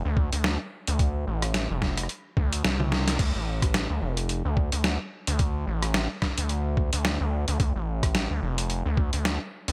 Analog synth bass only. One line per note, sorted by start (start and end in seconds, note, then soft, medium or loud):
0.05 0.30 D2 loud
0.33 0.58 D2 loud
0.88 1.25 D2 medium
1.27 1.68 A1 loud
1.70 2.08 F1 loud
2.37 2.62 D2 medium
2.65 3.18 C2 loud
3.19 3.33 D2 loud
3.35 3.88 A1 medium
3.90 4.00 D2 loud
4.02 4.43 F1 medium
4.45 4.70 D2 loud
4.73 4.98 D2 medium
5.28 5.65 D2 medium
5.67 6.08 A1 loud
6.38 6.90 D2 loud
6.93 7.18 D2 loud
7.21 7.46 D2 loud
7.48 7.58 D2 loud
7.60 7.73 D2 loud
7.76 8.28 A1 loud
8.30 8.40 D2 medium
8.42 8.83 F1 medium
8.86 9.11 D2 loud
9.13 9.38 D2 loud
9.68 9.72 D2 loud